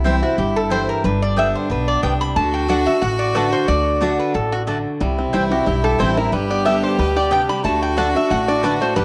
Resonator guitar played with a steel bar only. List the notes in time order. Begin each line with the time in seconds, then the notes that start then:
0.23 F#4
0.38 G4
0.56 A4
0.71 C5
0.89 A#4
1.05 B4
1.22 D5
1.39 E5
1.55 C5
1.71 B4
1.88 D5
2.03 G5
2.21 B5
2.36 A5
2.54 G5
2.70 F#5
2.86 E5
3.02 F#5
3.19 D5
3.35 B4
3.52 C5
3.68 D5
4.19 B4
4.35 A4
4.52 F#4
5.51 F#4
5.67 G4
5.84 A4
6.00 C5
6.17 A#4
6.33 B4
6.51 D5
6.66 E5
6.83 C5
6.99 B4
7.17 D5
7.33 G5
7.49 B5
7.65 A5
7.83 G5
7.98 F#5
8.16 E5
8.31 F#5
8.48 D5
8.64 B4
8.82 C5
8.96 B4